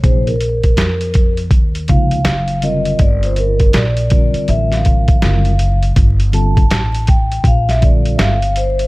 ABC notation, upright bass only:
X:1
M:4/4
L:1/16
Q:"Swing 16ths" 1/4=81
K:Gphr
V:1 name="Upright bass" clef=bass
B,,,4 F,,4 E,,2 _D,,2 _G,,,4 | G,,,4 B,,,3 z =A,,,4 _G,,,4 | G,,,4 =A,,,4 B,,,4 G,,,4 |]